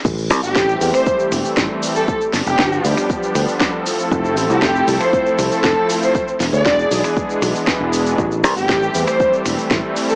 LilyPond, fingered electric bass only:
\new Staff \with { instrumentName = "Fingered electric bass" } { \clef bass \time 4/4 \key a \minor \tempo 4 = 118 a,,8 c,16 g,,16 a,,16 r16 e,16 r8. e,,16 r16 a,,16 r8. | r8 g,,16 f,,16 g,,16 r16 d,16 r8. d,16 r4 r16 | f,,8 a,,16 c,16 f,,16 r16 c,16 r8. c,16 r16 f,,16 r8. | r8 e,,16 d,16 e,,16 r16 b,,16 r8. b,,16 r8 e,,8. |
a,,8 c,16 g,,16 a,,16 r16 e,16 r8. e,,16 r16 a,,16 r8. | }